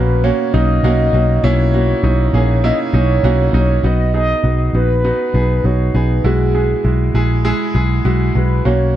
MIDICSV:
0, 0, Header, 1, 4, 480
1, 0, Start_track
1, 0, Key_signature, 5, "major"
1, 0, Tempo, 601202
1, 1146, Time_signature, 4, 2, 24, 8
1, 7156, End_track
2, 0, Start_track
2, 0, Title_t, "Soft synth lead"
2, 0, Program_c, 0, 80
2, 0, Note_on_c, 0, 71, 90
2, 191, Note_on_c, 0, 73, 101
2, 203, Note_off_c, 0, 71, 0
2, 421, Note_off_c, 0, 73, 0
2, 426, Note_on_c, 0, 75, 115
2, 1149, Note_on_c, 0, 73, 102
2, 1161, Note_off_c, 0, 75, 0
2, 2106, Note_off_c, 0, 73, 0
2, 2116, Note_on_c, 0, 75, 96
2, 2221, Note_off_c, 0, 75, 0
2, 2355, Note_on_c, 0, 73, 86
2, 2797, Note_off_c, 0, 73, 0
2, 2841, Note_on_c, 0, 73, 93
2, 3056, Note_off_c, 0, 73, 0
2, 3080, Note_on_c, 0, 75, 98
2, 3295, Note_off_c, 0, 75, 0
2, 3318, Note_on_c, 0, 75, 103
2, 3758, Note_off_c, 0, 75, 0
2, 3795, Note_on_c, 0, 71, 88
2, 4514, Note_on_c, 0, 73, 89
2, 4526, Note_off_c, 0, 71, 0
2, 4758, Note_on_c, 0, 71, 84
2, 4770, Note_off_c, 0, 73, 0
2, 4994, Note_on_c, 0, 68, 77
2, 5006, Note_off_c, 0, 71, 0
2, 5469, Note_off_c, 0, 68, 0
2, 6670, Note_on_c, 0, 71, 86
2, 6907, Note_on_c, 0, 73, 96
2, 6919, Note_off_c, 0, 71, 0
2, 7147, Note_off_c, 0, 73, 0
2, 7156, End_track
3, 0, Start_track
3, 0, Title_t, "Upright piano"
3, 0, Program_c, 1, 0
3, 0, Control_c, 1, 64, 127
3, 0, Note_on_c, 1, 47, 72
3, 0, Note_on_c, 1, 58, 76
3, 0, Note_on_c, 1, 61, 70
3, 0, Note_on_c, 1, 66, 77
3, 161, Note_off_c, 1, 61, 0
3, 162, Note_off_c, 1, 58, 0
3, 163, Note_off_c, 1, 66, 0
3, 190, Note_on_c, 1, 58, 93
3, 191, Note_on_c, 1, 61, 85
3, 191, Note_on_c, 1, 66, 94
3, 402, Note_off_c, 1, 58, 0
3, 402, Note_off_c, 1, 61, 0
3, 402, Note_off_c, 1, 66, 0
3, 428, Note_on_c, 1, 61, 69
3, 429, Note_on_c, 1, 58, 73
3, 429, Note_on_c, 1, 63, 81
3, 640, Note_off_c, 1, 61, 0
3, 641, Note_off_c, 1, 58, 0
3, 641, Note_off_c, 1, 63, 0
3, 672, Note_on_c, 1, 58, 91
3, 672, Note_on_c, 1, 66, 98
3, 674, Note_on_c, 1, 61, 83
3, 882, Note_off_c, 1, 58, 0
3, 882, Note_off_c, 1, 66, 0
3, 883, Note_off_c, 1, 61, 0
3, 912, Note_on_c, 1, 58, 76
3, 912, Note_on_c, 1, 66, 88
3, 913, Note_on_c, 1, 61, 66
3, 1122, Note_off_c, 1, 58, 0
3, 1122, Note_off_c, 1, 61, 0
3, 1122, Note_off_c, 1, 66, 0
3, 1146, Note_on_c, 1, 58, 92
3, 1147, Note_off_c, 1, 47, 0
3, 1147, Note_on_c, 1, 47, 64
3, 1148, Note_on_c, 1, 61, 87
3, 1148, Note_on_c, 1, 64, 97
3, 1359, Note_off_c, 1, 58, 0
3, 1359, Note_off_c, 1, 61, 0
3, 1360, Note_off_c, 1, 64, 0
3, 1387, Note_on_c, 1, 61, 65
3, 1389, Note_on_c, 1, 58, 72
3, 1389, Note_on_c, 1, 66, 81
3, 1599, Note_off_c, 1, 61, 0
3, 1600, Note_off_c, 1, 58, 0
3, 1600, Note_off_c, 1, 66, 0
3, 1625, Note_on_c, 1, 58, 66
3, 1626, Note_on_c, 1, 63, 75
3, 1627, Note_on_c, 1, 61, 61
3, 1833, Note_off_c, 1, 47, 0
3, 1838, Note_off_c, 1, 58, 0
3, 1838, Note_off_c, 1, 63, 0
3, 1839, Note_off_c, 1, 61, 0
3, 1866, Note_on_c, 1, 58, 78
3, 1868, Note_on_c, 1, 61, 72
3, 1868, Note_on_c, 1, 68, 90
3, 2078, Note_off_c, 1, 58, 0
3, 2079, Note_off_c, 1, 61, 0
3, 2079, Note_off_c, 1, 68, 0
3, 2107, Note_on_c, 1, 58, 81
3, 2108, Note_on_c, 1, 61, 80
3, 2108, Note_on_c, 1, 64, 94
3, 2318, Note_off_c, 1, 58, 0
3, 2319, Note_off_c, 1, 61, 0
3, 2319, Note_off_c, 1, 64, 0
3, 2346, Note_on_c, 1, 63, 77
3, 2347, Note_on_c, 1, 58, 71
3, 2347, Note_on_c, 1, 61, 66
3, 2558, Note_off_c, 1, 58, 0
3, 2558, Note_off_c, 1, 61, 0
3, 2558, Note_off_c, 1, 63, 0
3, 2588, Note_on_c, 1, 58, 86
3, 2588, Note_on_c, 1, 61, 80
3, 2588, Note_on_c, 1, 66, 95
3, 2799, Note_off_c, 1, 58, 0
3, 2799, Note_off_c, 1, 61, 0
3, 2799, Note_off_c, 1, 66, 0
3, 2825, Note_on_c, 1, 58, 71
3, 2827, Note_on_c, 1, 61, 66
3, 2827, Note_on_c, 1, 63, 83
3, 3037, Note_off_c, 1, 58, 0
3, 3038, Note_off_c, 1, 61, 0
3, 3038, Note_off_c, 1, 63, 0
3, 3066, Note_on_c, 1, 66, 84
3, 3067, Note_on_c, 1, 59, 77
3, 3068, Note_on_c, 1, 63, 75
3, 3074, Control_c, 1, 64, 0
3, 3210, Control_c, 1, 64, 127
3, 3278, Note_off_c, 1, 59, 0
3, 3278, Note_off_c, 1, 63, 0
3, 3278, Note_off_c, 1, 66, 0
3, 3305, Note_on_c, 1, 59, 64
3, 3305, Note_on_c, 1, 63, 58
3, 3306, Note_on_c, 1, 68, 71
3, 3517, Note_off_c, 1, 59, 0
3, 3517, Note_off_c, 1, 63, 0
3, 3518, Note_off_c, 1, 68, 0
3, 3545, Note_on_c, 1, 63, 50
3, 3546, Note_on_c, 1, 66, 66
3, 3547, Note_on_c, 1, 59, 58
3, 3757, Note_off_c, 1, 63, 0
3, 3758, Note_off_c, 1, 59, 0
3, 3758, Note_off_c, 1, 66, 0
3, 3789, Note_on_c, 1, 59, 63
3, 3790, Note_on_c, 1, 63, 56
3, 3790, Note_on_c, 1, 66, 69
3, 3999, Note_off_c, 1, 59, 0
3, 4000, Note_off_c, 1, 63, 0
3, 4000, Note_off_c, 1, 66, 0
3, 4028, Note_on_c, 1, 59, 75
3, 4029, Note_on_c, 1, 63, 67
3, 4029, Note_on_c, 1, 66, 81
3, 4239, Note_off_c, 1, 59, 0
3, 4239, Note_off_c, 1, 63, 0
3, 4239, Note_off_c, 1, 66, 0
3, 4268, Note_on_c, 1, 59, 64
3, 4268, Note_on_c, 1, 63, 61
3, 4268, Note_on_c, 1, 68, 69
3, 4479, Note_off_c, 1, 59, 0
3, 4479, Note_off_c, 1, 63, 0
3, 4479, Note_off_c, 1, 68, 0
3, 4508, Note_on_c, 1, 63, 54
3, 4510, Note_on_c, 1, 59, 61
3, 4510, Note_on_c, 1, 66, 66
3, 4719, Note_off_c, 1, 63, 0
3, 4720, Note_off_c, 1, 59, 0
3, 4720, Note_off_c, 1, 66, 0
3, 4747, Note_on_c, 1, 59, 62
3, 4748, Note_on_c, 1, 63, 57
3, 4748, Note_on_c, 1, 68, 72
3, 4958, Note_off_c, 1, 59, 0
3, 4959, Note_off_c, 1, 63, 0
3, 4959, Note_off_c, 1, 68, 0
3, 4986, Note_on_c, 1, 47, 57
3, 4986, Note_on_c, 1, 56, 79
3, 4986, Note_on_c, 1, 64, 76
3, 4986, Note_on_c, 1, 66, 93
3, 4995, Control_c, 1, 64, 0
3, 5147, Control_c, 1, 64, 127
3, 5198, Note_off_c, 1, 56, 0
3, 5198, Note_off_c, 1, 64, 0
3, 5198, Note_off_c, 1, 66, 0
3, 5225, Note_on_c, 1, 56, 68
3, 5226, Note_on_c, 1, 64, 62
3, 5227, Note_on_c, 1, 68, 67
3, 5438, Note_off_c, 1, 56, 0
3, 5438, Note_off_c, 1, 64, 0
3, 5439, Note_off_c, 1, 68, 0
3, 5464, Note_on_c, 1, 56, 60
3, 5464, Note_on_c, 1, 64, 55
3, 5465, Note_on_c, 1, 66, 68
3, 5674, Note_off_c, 1, 47, 0
3, 5678, Note_off_c, 1, 56, 0
3, 5678, Note_off_c, 1, 64, 0
3, 5678, Note_off_c, 1, 66, 0
3, 5707, Note_on_c, 1, 56, 72
3, 5707, Note_on_c, 1, 68, 89
3, 5708, Note_on_c, 1, 64, 68
3, 5919, Note_off_c, 1, 56, 0
3, 5919, Note_off_c, 1, 68, 0
3, 5920, Note_off_c, 1, 64, 0
3, 5945, Note_on_c, 1, 56, 95
3, 5946, Note_on_c, 1, 68, 103
3, 5947, Note_on_c, 1, 64, 85
3, 6158, Note_off_c, 1, 56, 0
3, 6159, Note_off_c, 1, 68, 0
3, 6160, Note_off_c, 1, 64, 0
3, 6187, Note_on_c, 1, 56, 76
3, 6187, Note_on_c, 1, 64, 75
3, 6188, Note_on_c, 1, 68, 89
3, 6400, Note_off_c, 1, 56, 0
3, 6400, Note_off_c, 1, 64, 0
3, 6400, Note_off_c, 1, 68, 0
3, 6428, Note_on_c, 1, 56, 75
3, 6428, Note_on_c, 1, 64, 73
3, 6428, Note_on_c, 1, 66, 89
3, 6640, Note_off_c, 1, 64, 0
3, 6640, Note_off_c, 1, 66, 0
3, 6641, Note_off_c, 1, 56, 0
3, 6668, Note_on_c, 1, 56, 64
3, 6669, Note_on_c, 1, 66, 72
3, 6670, Note_on_c, 1, 64, 61
3, 6881, Note_off_c, 1, 56, 0
3, 6881, Note_off_c, 1, 64, 0
3, 6881, Note_off_c, 1, 66, 0
3, 6907, Note_on_c, 1, 66, 90
3, 6908, Note_on_c, 1, 47, 54
3, 6908, Note_on_c, 1, 58, 85
3, 6909, Note_on_c, 1, 61, 78
3, 6918, Control_c, 1, 64, 0
3, 7052, Control_c, 1, 64, 127
3, 7120, Note_off_c, 1, 66, 0
3, 7121, Note_off_c, 1, 58, 0
3, 7121, Note_off_c, 1, 61, 0
3, 7156, Note_off_c, 1, 47, 0
3, 7156, End_track
4, 0, Start_track
4, 0, Title_t, "Picked electric bass"
4, 0, Program_c, 2, 34
4, 0, Note_on_c, 2, 34, 84
4, 245, Note_off_c, 2, 34, 0
4, 431, Note_on_c, 2, 35, 87
4, 626, Note_off_c, 2, 35, 0
4, 665, Note_on_c, 2, 35, 92
4, 862, Note_off_c, 2, 35, 0
4, 901, Note_on_c, 2, 35, 94
4, 1100, Note_off_c, 2, 35, 0
4, 1146, Note_on_c, 2, 35, 93
4, 1539, Note_off_c, 2, 35, 0
4, 1624, Note_on_c, 2, 35, 94
4, 1821, Note_off_c, 2, 35, 0
4, 1863, Note_on_c, 2, 34, 84
4, 2158, Note_off_c, 2, 34, 0
4, 2343, Note_on_c, 2, 35, 86
4, 2540, Note_off_c, 2, 35, 0
4, 2582, Note_on_c, 2, 35, 82
4, 2779, Note_off_c, 2, 35, 0
4, 2819, Note_on_c, 2, 35, 90
4, 3017, Note_off_c, 2, 35, 0
4, 3061, Note_on_c, 2, 35, 84
4, 3456, Note_off_c, 2, 35, 0
4, 3542, Note_on_c, 2, 35, 84
4, 3739, Note_off_c, 2, 35, 0
4, 3779, Note_on_c, 2, 34, 69
4, 4076, Note_off_c, 2, 34, 0
4, 4263, Note_on_c, 2, 35, 75
4, 4460, Note_off_c, 2, 35, 0
4, 4504, Note_on_c, 2, 35, 74
4, 4701, Note_off_c, 2, 35, 0
4, 4745, Note_on_c, 2, 35, 90
4, 4941, Note_off_c, 2, 35, 0
4, 4983, Note_on_c, 2, 35, 92
4, 5377, Note_off_c, 2, 35, 0
4, 5466, Note_on_c, 2, 35, 79
4, 5662, Note_off_c, 2, 35, 0
4, 5703, Note_on_c, 2, 34, 79
4, 5999, Note_off_c, 2, 34, 0
4, 6185, Note_on_c, 2, 35, 77
4, 6382, Note_off_c, 2, 35, 0
4, 6426, Note_on_c, 2, 35, 79
4, 6623, Note_off_c, 2, 35, 0
4, 6668, Note_on_c, 2, 35, 85
4, 6864, Note_off_c, 2, 35, 0
4, 6911, Note_on_c, 2, 35, 84
4, 7156, Note_off_c, 2, 35, 0
4, 7156, End_track
0, 0, End_of_file